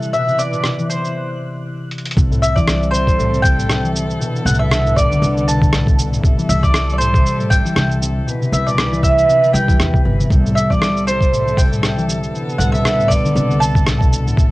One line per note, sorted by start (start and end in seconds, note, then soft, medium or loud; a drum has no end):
0.00 0.11 C3 medium
0.00 0.18 C3 medium
0.00 0.11 G3 medium
0.00 1.15 F#6 medium
0.00 cabasa soft
0.12 0.31 B2 medium
0.12 1.14 E3 medium
0.12 1.14 B4 medium
0.12 0.39 E5 loud
0.12 cabasa soft
0.27 0.57 C3 medium
0.27 cabasa soft
0.39 0.89 D5 medium
0.39 cabasa medium
0.53 0.69 B2 medium
0.53 cabasa soft
0.64 2.22 C3 medium
0.64 cross-stick medium
0.64 cabasa soft
0.78 2.22 E3 medium
0.78 cabasa soft
0.90 1.62 C5 medium
0.90 cabasa medium
1.05 cabasa soft
1.91 closed hi-hat soft
1.98 closed hi-hat medium
2.06 closed hi-hat medium
2.11 closed hi-hat medium
2.16 4.13 C2 loud
2.16 4.18 G3 medium
2.16 4.18 C4 medium
2.16 6.20 A4 medium
2.16 kick loud
2.16 cabasa soft
2.31 2.47 A2 medium
2.31 cabasa soft
2.42 2.92 C3 medium
2.42 2.57 E5 medium
2.42 cabasa medium
2.56 2.98 E3 medium
2.56 2.90 D5 medium
2.56 kick medium
2.56 cabasa soft
2.68 cross-stick loud
2.68 cabasa soft
2.83 cabasa soft
2.91 3.24 C3 medium
2.91 3.44 C5 medium
2.91 cabasa medium
3.07 kick loud
3.07 cabasa soft
3.18 3.36 A2 medium
3.18 cabasa soft
3.33 3.62 C3 medium
3.33 cabasa soft
3.42 3.90 G5 loud
3.42 kick loud
3.42 cabasa medium
3.58 3.74 A2 medium
3.58 cabasa soft
3.69 4.25 C3 medium
3.69 cross-stick loud
3.69 cabasa soft
3.83 4.25 E3 medium
3.83 cabasa soft
3.96 cabasa medium
4.10 cabasa soft
4.20 4.51 B2 medium
4.20 6.22 D3 medium
4.20 6.22 B3 medium
4.20 cabasa soft
4.36 cabasa soft
4.45 5.15 C2 medium
4.45 4.63 A2 medium
4.45 4.59 F#5 medium
4.45 cabasa medium
4.54 cabasa soft
4.59 4.89 B2 medium
4.59 4.97 E5 medium
4.71 cross-stick loud
4.71 cabasa soft
4.85 5.01 A2 medium
4.85 cabasa soft
4.96 5.14 B2 medium
4.96 5.49 D5 medium
4.96 kick medium
4.96 cabasa medium
5.11 5.52 D3 medium
5.11 cabasa soft
5.22 6.17 C2 loud
5.22 cabasa soft
5.37 cabasa soft
5.47 5.78 B2 medium
5.47 5.95 A5 medium
5.47 cabasa medium
5.62 kick loud
5.62 cabasa soft
5.72 5.90 A2 medium
5.72 cross-stick loud
5.72 cabasa soft
5.87 6.16 B2 medium
5.87 kick loud
5.87 cabasa soft
5.99 cabasa medium
6.12 6.29 A2 medium
6.12 cabasa soft
6.23 6.73 C3 medium
6.23 8.25 G3 medium
6.23 8.25 A4 medium
6.23 kick loud
6.23 cabasa soft
6.38 6.79 E3 medium
6.38 cabasa soft
6.49 7.18 C2 loud
6.49 6.64 E5 medium
6.49 cabasa medium
6.63 6.92 D5 loud
6.63 kick medium
6.63 cabasa soft
6.74 7.05 C3 medium
6.74 cross-stick loud
6.74 cabasa soft
6.90 6.98 D5 medium
6.90 cabasa soft
6.98 7.18 A2 medium
6.98 7.51 C5 loud
6.98 cabasa medium
7.13 7.43 C3 medium
7.13 kick loud
7.13 cabasa soft
7.26 cabasa soft
7.39 7.56 A2 medium
7.39 cabasa soft
7.50 8.00 C3 medium
7.50 7.98 G5 loud
7.50 kick loud
7.50 cabasa medium
7.64 8.07 E3 medium
7.64 cabasa soft
7.76 8.20 C2 medium
7.76 cross-stick loud
7.76 cabasa soft
7.91 cabasa soft
8.01 8.32 C3 medium
8.01 cabasa medium
8.27 8.45 B2 medium
8.27 10.28 E3 medium
8.27 10.28 B4 medium
8.27 cabasa soft
8.41 8.70 C3 medium
8.41 cabasa soft
8.52 9.22 C2 medium
8.52 8.67 E5 medium
8.52 cabasa medium
8.67 8.83 B2 medium
8.67 9.03 D5 medium
8.67 cabasa soft
8.78 9.27 C3 medium
8.78 cross-stick loud
8.78 cabasa soft
8.92 9.34 E3 medium
8.92 cabasa soft
9.03 9.56 E5 loud
9.03 kick medium
9.03 cabasa medium
9.18 cabasa soft
9.28 9.92 C3 medium
9.28 cabasa soft
9.44 cabasa soft
9.53 9.79 C2 loud
9.53 10.35 G3 medium
9.53 10.01 G5 loud
9.53 cabasa medium
9.68 9.97 E3 medium
9.68 kick loud
9.68 cabasa soft
9.79 9.96 E2 medium
9.79 cross-stick loud
9.79 cabasa soft
9.94 10.18 C3 medium
9.94 kick loud
9.94 cabasa soft
10.04 10.22 G1 medium
10.04 10.25 B3 medium
10.19 10.35 C3 medium
10.19 cabasa soft
10.30 12.27 C2 loud
10.30 12.32 G3 medium
10.30 14.51 A4 medium
10.30 kick loud
10.30 cabasa soft
10.44 10.61 A2 medium
10.44 cabasa soft
10.55 10.80 C3 medium
10.55 10.70 E5 medium
10.55 cabasa medium
10.69 10.86 E3 medium
10.69 11.07 D5 loud
10.69 kick medium
10.69 cabasa soft
10.81 11.37 C3 medium
10.81 cross-stick medium
10.81 cabasa soft
10.97 cabasa soft
11.07 11.59 C5 medium
11.07 cabasa medium
11.21 kick medium
11.21 cabasa soft
11.31 11.50 A2 medium
11.31 cabasa soft
11.46 11.75 C3 medium
11.46 cabasa soft
11.57 12.05 G5 loud
11.57 kick loud
11.57 cabasa medium
11.71 11.88 A2 medium
11.71 cabasa soft
11.83 12.07 C3 medium
11.83 cross-stick medium
11.83 cabasa soft
11.97 12.13 E3 medium
11.97 cabasa soft
12.08 12.39 C3 medium
12.08 cabasa medium
12.24 cabasa soft
12.34 14.35 D3 medium
12.34 14.35 B3 medium
12.34 cabasa soft
12.49 cabasa soft
12.59 13.29 C2 loud
12.59 12.77 A2 medium
12.59 12.72 F#5 medium
12.59 cabasa medium
12.72 13.02 B2 medium
12.72 13.11 E5 loud
12.72 cabasa soft
12.85 cross-stick medium
12.85 cabasa soft
12.99 13.15 A2 medium
12.99 cabasa soft
13.08 13.28 B2 medium
13.08 13.62 D5 loud
13.08 kick medium
13.08 cabasa medium
13.24 13.40 D3 medium
13.24 cabasa soft
13.35 14.30 C2 loud
13.35 13.91 B2 medium
13.35 cabasa soft
13.51 cabasa soft
13.60 14.08 A5 loud
13.60 cabasa medium
13.75 kick loud
13.75 cabasa soft
13.86 14.04 A2 medium
13.86 cross-stick loud
13.86 cabasa soft
14.00 14.29 B2 medium
14.00 kick loud
14.00 cabasa soft
14.13 cabasa medium
14.26 14.42 A2 medium
14.26 cabasa soft
14.37 14.51 C3 medium
14.37 14.51 G3 medium
14.37 kick loud
14.37 cabasa soft